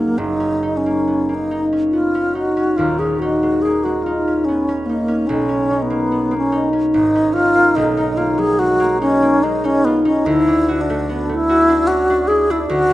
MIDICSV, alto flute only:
0, 0, Header, 1, 2, 480
1, 0, Start_track
1, 0, Key_signature, 6, "major"
1, 0, Tempo, 863309
1, 102, Time_signature, 3, 2, 24, 8
1, 2018, Tempo, 828729
1, 6338, Tempo, 804290
1, 7438, End_track
2, 0, Start_track
2, 0, Title_t, "Alto flute"
2, 0, Program_c, 0, 73
2, 0, Note_on_c, 0, 58, 52
2, 101, Note_on_c, 0, 63, 65
2, 110, Note_off_c, 0, 58, 0
2, 428, Note_on_c, 0, 61, 54
2, 437, Note_off_c, 0, 63, 0
2, 748, Note_on_c, 0, 63, 57
2, 756, Note_off_c, 0, 61, 0
2, 921, Note_off_c, 0, 63, 0
2, 1062, Note_on_c, 0, 65, 59
2, 1301, Note_on_c, 0, 66, 66
2, 1310, Note_off_c, 0, 65, 0
2, 1538, Note_on_c, 0, 65, 69
2, 1547, Note_off_c, 0, 66, 0
2, 1662, Note_on_c, 0, 68, 62
2, 1670, Note_off_c, 0, 65, 0
2, 1776, Note_on_c, 0, 66, 63
2, 1784, Note_off_c, 0, 68, 0
2, 2013, Note_on_c, 0, 68, 67
2, 2021, Note_off_c, 0, 66, 0
2, 2140, Note_on_c, 0, 66, 60
2, 2148, Note_off_c, 0, 68, 0
2, 2253, Note_on_c, 0, 65, 59
2, 2261, Note_off_c, 0, 66, 0
2, 2491, Note_on_c, 0, 61, 59
2, 2500, Note_off_c, 0, 65, 0
2, 2731, Note_on_c, 0, 58, 62
2, 2739, Note_off_c, 0, 61, 0
2, 2968, Note_on_c, 0, 61, 63
2, 2977, Note_off_c, 0, 58, 0
2, 3289, Note_on_c, 0, 59, 65
2, 3298, Note_off_c, 0, 61, 0
2, 3606, Note_off_c, 0, 59, 0
2, 3609, Note_on_c, 0, 61, 69
2, 3784, Note_off_c, 0, 61, 0
2, 3926, Note_on_c, 0, 63, 75
2, 4164, Note_on_c, 0, 65, 85
2, 4172, Note_off_c, 0, 63, 0
2, 4407, Note_on_c, 0, 63, 74
2, 4415, Note_off_c, 0, 65, 0
2, 4649, Note_on_c, 0, 65, 73
2, 4658, Note_off_c, 0, 63, 0
2, 4775, Note_on_c, 0, 68, 85
2, 4783, Note_off_c, 0, 65, 0
2, 4891, Note_on_c, 0, 66, 88
2, 4900, Note_off_c, 0, 68, 0
2, 5135, Note_off_c, 0, 66, 0
2, 5138, Note_on_c, 0, 61, 80
2, 5380, Note_on_c, 0, 63, 70
2, 5389, Note_off_c, 0, 61, 0
2, 5507, Note_on_c, 0, 61, 82
2, 5515, Note_off_c, 0, 63, 0
2, 5620, Note_on_c, 0, 59, 74
2, 5629, Note_off_c, 0, 61, 0
2, 5738, Note_off_c, 0, 59, 0
2, 5744, Note_on_c, 0, 61, 69
2, 5857, Note_on_c, 0, 64, 81
2, 5866, Note_off_c, 0, 61, 0
2, 6177, Note_on_c, 0, 62, 75
2, 6186, Note_off_c, 0, 64, 0
2, 6489, Note_on_c, 0, 64, 91
2, 6498, Note_off_c, 0, 62, 0
2, 6807, Note_on_c, 0, 66, 78
2, 6815, Note_off_c, 0, 64, 0
2, 7048, Note_on_c, 0, 68, 87
2, 7057, Note_off_c, 0, 66, 0
2, 7186, Note_on_c, 0, 64, 78
2, 7195, Note_off_c, 0, 68, 0
2, 7293, Note_off_c, 0, 64, 0
2, 7296, Note_on_c, 0, 66, 97
2, 7438, Note_off_c, 0, 66, 0
2, 7438, End_track
0, 0, End_of_file